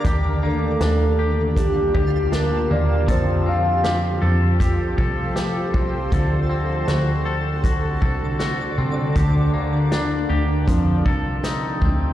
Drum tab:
HH |x-x-x-x-|x-x-x-x-|x-x-x-x-|x-x-x-x-|
SD |--o---o-|--o---o-|--o---o-|--o---o-|
BD |o---oo--|o---oo-o|o---oo--|o---oo-o|